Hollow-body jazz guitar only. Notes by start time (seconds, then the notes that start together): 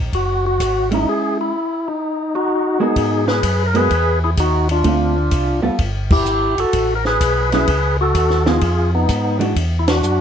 0.91 G#3 C#4 E4
2.80 G#3 B3 F#4 A#4
3.74 G#3 B3 F#4 A#4
4.84 D3 A3 C4 F4
5.62 G3 B3 F4 A4
7.53 F#3 C#4 E4
8.46 F3 B3 D#4 G#4
9.39 E3 G#3 D4 F#4